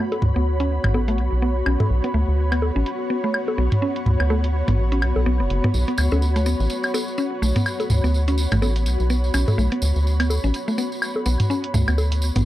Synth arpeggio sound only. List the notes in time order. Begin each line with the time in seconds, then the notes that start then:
0.36 B3
0.60 C#4
0.94 B3
1.08 A3
1.42 B3
1.66 C#4
2.04 B3
2.14 A3
2.52 B3
2.76 C#4
3.10 B3
3.24 A3
3.58 B3
3.82 C#4
4.20 B3
4.30 A3
4.68 B3
4.92 C#4
5.26 B3
5.40 B3
5.64 B3
5.88 B3
6.12 C#4
6.36 A3
6.46 B3
6.94 B3
7.18 C#4
7.42 A3
7.56 B3
8.04 B3
8.28 C#4
8.52 A3
8.62 B3
9.10 B3
9.34 C#4
9.58 A3
9.72 B3
10.20 B3
10.44 C#4
10.68 A3
10.78 B3
11.26 B3
11.50 C#4
11.74 A3
11.88 B3
12.36 B3